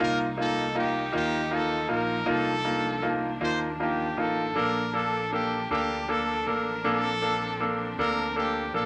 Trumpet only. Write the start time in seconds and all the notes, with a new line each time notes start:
0.03 A#4
0.41 A4
0.78 G4
1.16 G4
1.54 A4
1.92 A#4
2.30 A4
3.44 C5
3.83 G4
4.20 A4
4.58 A#4
4.96 A4
5.34 G4
5.72 G4
6.11 A4
6.48 A#4
6.87 A4
8.00 A#4
8.38 G4
8.76 A4